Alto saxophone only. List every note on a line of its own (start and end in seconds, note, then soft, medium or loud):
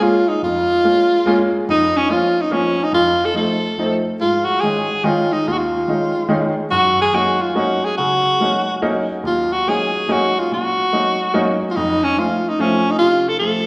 0.03 0.30 F4 medium
0.28 0.42 D#4 medium
0.44 1.45 F4 loud
1.70 1.98 D#4 medium
1.97 2.11 C#4 medium
2.10 2.43 F4 medium
2.41 2.54 D#4 medium
2.52 2.85 C#4 medium
2.84 2.94 D#4 medium
2.94 3.27 F4 loud
3.25 3.36 A4 medium
3.37 3.97 A4 medium
4.20 4.46 F4 medium
4.45 4.62 F#4 medium
4.61 5.07 G#4 medium
5.05 5.34 F4 medium
5.32 5.49 D#4 medium
5.48 5.54 F4 medium
5.53 5.59 F#4 medium
5.58 6.51 F4 medium
6.71 6.97 F#4 medium
7.01 7.16 G#4 medium
7.15 7.43 F#4 medium
7.42 7.57 F4 medium
7.56 7.86 F#4 medium
7.85 7.97 G#4 medium
7.97 8.78 F#4 medium
9.27 9.54 F4 medium
9.53 9.70 F#4 medium
9.69 10.14 G#4 medium
10.13 10.41 F#4 medium
10.39 10.52 F4 medium
10.54 11.53 F#4 medium
11.71 11.78 F4 medium
11.76 12.05 D#4 loud
12.04 12.20 C#4 medium
12.19 12.50 F4 medium
12.49 12.62 D#4 medium
12.60 12.92 C#4 medium
12.91 12.98 D#4 medium
12.99 13.30 F4 loud
13.29 13.39 A4 medium
13.39 13.66 A4 medium